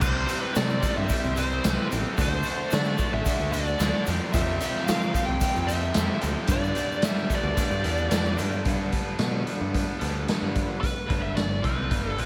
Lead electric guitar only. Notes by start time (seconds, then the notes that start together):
0.02 C5
0.42 B4
0.56 D5
0.97 E5
1.38 C5
1.74 B4
2.21 C5
2.74 D5
3.14 E5
3.53 D5
4.32 E5
4.86 F5
5.25 G5
5.67 E5
6.52 D5
7.05 E5
7.35 D5
10.81 B4
11.22 E5
11.37 D5
11.65 B4
12.09 A4
12.21 B4